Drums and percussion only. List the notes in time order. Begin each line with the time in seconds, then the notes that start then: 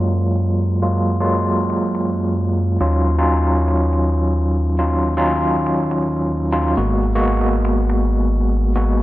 1.70 finger snap
1.95 finger snap
3.68 finger snap
3.93 finger snap
5.66 finger snap
5.91 finger snap
7.65 finger snap
7.90 finger snap